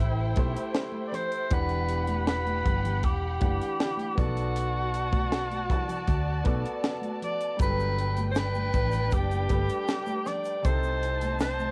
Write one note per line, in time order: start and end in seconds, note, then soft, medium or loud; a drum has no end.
0.00 0.34 A1 loud
0.00 0.36 A3 medium
0.00 0.37 E4 medium
0.00 0.88 E4 loud
0.00 1.49 E4 medium
0.00 0.38 G4 medium
0.00 0.39 C5 medium
0.00 1.49 C5 medium
0.00 1.49 G5 medium
0.36 0.55 B1 medium
0.36 1.45 A3 medium
0.36 1.46 E4 medium
0.36 1.46 G4 medium
0.36 1.47 C5 loud
0.36 kick loud
0.36 closed hi-hat medium
0.36 high conga medium
0.56 closed hi-hat medium
0.74 snare loud
0.74 closed hi-hat medium
0.74 muted conga soft
0.92 high conga medium
1.08 1.17 D5 medium
1.12 1.56 C5 loud
1.12 snare soft
1.12 closed hi-hat medium
1.12 low conga medium
1.32 closed hi-hat soft
1.50 2.62 E1 loud
1.50 2.95 E3 medium
1.50 2.96 D4 medium
1.50 2.96 G4 medium
1.50 4.15 G4 medium
1.50 2.97 F#5 medium
1.50 4.14 F#5 medium
1.50 4.14 B5 medium
1.50 kick loud
1.50 closed hi-hat loud
1.50 muted conga soft
1.54 2.28 B4 loud
1.69 closed hi-hat soft
1.89 closed hi-hat medium
2.07 closed hi-hat medium
2.07 high conga medium
2.27 3.06 B4 loud
2.27 snare loud
2.27 closed hi-hat loud
2.47 closed hi-hat soft
2.47 high conga medium
2.66 3.04 G1 loud
2.66 kick loud
2.66 closed hi-hat medium
2.66 low conga medium
2.85 closed hi-hat medium
2.85 low conga medium
3.03 3.38 E1 loud
3.03 4.19 G4 loud
3.03 kick medium
3.03 closed hi-hat medium
3.03 muted conga soft
3.40 3.59 F#1 medium
3.40 4.17 E3 medium
3.40 4.18 D4 medium
3.40 4.18 G4 medium
3.40 4.19 F#5 medium
3.40 kick loud
3.40 closed hi-hat medium
3.40 high conga medium
3.62 closed hi-hat medium
3.80 snare loud
3.80 closed hi-hat medium
3.97 closed hi-hat soft
3.97 muted conga soft
3.97 high conga medium
4.15 5.71 B1 loud
4.15 5.61 B3 medium
4.15 5.61 F#4 medium
4.15 6.95 F#4 loud
4.15 7.56 F#4 medium
4.15 5.62 A4 medium
4.15 5.62 D5 medium
4.15 7.56 D5 medium
4.15 7.56 A5 medium
4.15 kick loud
4.15 closed hi-hat medium
4.15 low conga medium
4.37 closed hi-hat soft
4.56 closed hi-hat loud
4.56 muted conga soft
4.94 closed hi-hat medium
5.12 kick loud
5.12 closed hi-hat medium
5.12 high conga medium
5.32 snare loud
5.32 closed hi-hat loud
5.32 muted conga soft
5.50 closed hi-hat soft
5.50 high conga medium
5.70 6.04 C2 loud
5.70 kick medium
5.70 closed hi-hat medium
5.70 low conga medium
5.88 closed hi-hat medium
5.88 low conga medium
6.07 6.42 D2 loud
6.07 kick medium
6.07 closed hi-hat medium
6.07 muted conga soft
6.44 6.63 B1 medium
6.44 7.53 B3 medium
6.44 7.54 F#4 medium
6.44 7.54 A4 medium
6.44 7.55 D5 medium
6.44 kick loud
6.44 closed hi-hat medium
6.44 high conga medium
6.65 closed hi-hat medium
6.84 snare loud
6.84 closed hi-hat medium
6.84 muted conga soft
7.02 closed hi-hat soft
7.02 high conga medium
7.22 7.58 D5 loud
7.22 closed hi-hat medium
7.22 low conga medium
7.41 closed hi-hat medium
7.57 8.70 G1 loud
7.57 9.04 F#3 medium
7.57 9.03 G3 medium
7.57 10.60 D4 medium
7.57 9.04 A4 medium
7.57 10.60 B4 medium
7.57 9.04 B4 medium
7.57 10.60 G5 loud
7.57 kick loud
7.57 closed hi-hat loud
7.57 shaker medium
7.62 8.26 B4 loud
7.79 muted conga soft
7.79 shaker soft
7.99 closed hi-hat medium
8.17 closed hi-hat medium
8.17 high conga medium
8.17 shaker soft
8.31 8.40 C5 medium
8.31 shaker medium
8.36 9.15 B4 loud
8.36 snare loud
8.36 closed hi-hat loud
8.36 muted conga soft
8.54 high conga medium
8.54 shaker soft
8.73 9.08 A1 loud
8.73 kick loud
8.73 closed hi-hat medium
8.73 low conga medium
8.73 shaker soft
8.91 closed hi-hat medium
8.91 low conga medium
8.91 shaker soft
9.11 9.46 F#1 loud
9.11 10.29 G4 loud
9.11 kick medium
9.11 closed hi-hat medium
9.11 muted conga soft
9.11 shaker medium
9.31 closed hi-hat soft
9.31 muted conga soft
9.31 shaker soft
9.49 9.67 G1 loud
9.49 10.58 G3 medium
9.49 10.58 G4 medium
9.49 10.59 A4 medium
9.49 10.59 B4 medium
9.49 kick loud
9.49 closed hi-hat medium
9.49 high conga medium
9.49 shaker soft
9.69 closed hi-hat medium
9.69 shaker soft
9.88 snare loud
9.88 closed hi-hat medium
9.88 shaker medium
10.06 muted conga soft
10.06 high conga medium
10.06 shaker medium
10.26 10.67 D5 loud
10.26 snare soft
10.26 closed hi-hat medium
10.26 low conga medium
10.26 shaker soft
10.44 closed hi-hat medium
10.44 shaker medium
10.62 11.71 C2 loud
10.62 11.71 C3 medium
10.62 11.71 C4 medium
10.62 11.71 D#4 medium
10.62 11.71 A4 medium
10.62 11.40 C5 loud
10.62 11.71 A5 loud
10.62 kick loud
10.62 closed hi-hat loud
10.62 muted conga soft
10.62 shaker medium
10.83 muted conga soft
10.83 shaker soft
11.03 closed hi-hat medium
11.21 closed hi-hat medium
11.21 high conga medium
11.21 shaker soft
11.39 11.71 C5 loud
11.39 snare loud
11.39 closed hi-hat loud
11.39 shaker medium
11.59 high conga medium
11.59 shaker soft